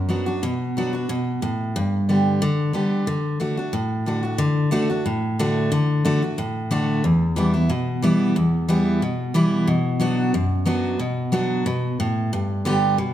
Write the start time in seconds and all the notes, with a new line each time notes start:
Already playing: F#2
0.09 F#3 B3 D4 F#4
0.26 D4 F#4
0.43 B2
0.77 F#3 B3 D4 F#4
0.93 D4 F#4
1.09 B2
1.42 A2
1.76 G2
2.09 D3 G3 B3 G4
2.42 D3
2.73 D3 G3 B3 G4
3.07 D3
3.40 D3 A3 D4 F#4
3.57 D4 F#4
3.73 A2
4.06 D3 A3 D4 F#4
4.23 D4 F#4
4.38 D3
4.71 D3 A3 D4 F#4
4.90 D4 F#4
5.06 A2
5.39 D3 A3 D4 F#4
5.72 D3
6.05 D3 A3 D4 F#4
6.22 D4 F#4
6.38 A2
6.71 D3 A3 D4 F#4
7.04 E2
7.36 E3 G3 B3 E4
7.54 B3 E4
7.69 B2
8.02 E3 G3 B3 E4
8.36 E2
8.68 E3 G3 B3 E4
9.02 B2
9.34 E3 G3 B3 E4
9.67 B2
10.00 F#3 B3 D4 F#4
10.34 F#2
10.65 F#3 B3 D4 F#4
10.99 B2
11.32 F#3 B3 D4 F#4
11.66 B2
12.00 A2
12.33 G2
12.65 D3 G3 B3 G4
12.98 B2